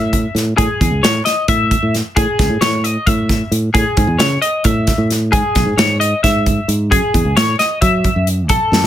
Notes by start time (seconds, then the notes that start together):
Already playing: A2 E5
0.13 kick, closed hi-hat
0.35 A2, snare, closed hi-hat
0.57 A2 G#4, kick, closed hi-hat
0.81 E2, kick, closed hi-hat
0.91 C#2
1.03 A2 C#5, snare, closed hi-hat
1.25 D#5, snare, closed hi-hat
1.48 A2 E5, kick, closed hi-hat
1.71 kick, closed hi-hat
1.83 A2
1.94 snare, closed hi-hat
2.16 A2 G#4, kick, closed hi-hat
2.39 C#2, kick, snare, closed hi-hat
2.49 A2
2.61 A2 C#5, snare, closed hi-hat
2.84 D#5, closed hi-hat
3.06 A2 E5, kick, closed hi-hat
3.29 kick, snare, closed hi-hat
3.51 A2, closed hi-hat
3.74 A2 G#4, kick, closed hi-hat
3.97 G#2, kick, closed hi-hat
4.07 E2
4.19 C#3 C#5, snare, closed hi-hat
4.42 D#5, closed hi-hat
4.64 A2 E5, kick, closed hi-hat
4.87 kick, snare, closed hi-hat
4.98 A2
5.10 snare, closed hi-hat
5.32 G#2 G#4, kick, closed hi-hat
5.55 B1, kick, snare, closed hi-hat
5.66 G#2
5.77 G#2 C#5, snare, closed hi-hat
6.00 D#5, closed hi-hat
6.23 G#2 E5, kick, snare, closed hi-hat
6.46 kick, closed hi-hat
6.68 G#2, closed hi-hat
6.91 F#2 G#4, kick, closed hi-hat
7.14 E2, kick, closed hi-hat
7.25 C#2
7.37 A2 C#5, snare, closed hi-hat
7.59 D#5, snare, closed hi-hat
7.81 F#3 E5, kick, closed hi-hat
8.04 kick, closed hi-hat
8.16 F#2
8.27 closed hi-hat
8.49 B1 A4, kick, closed hi-hat
8.72 F#2, snare
8.83 B1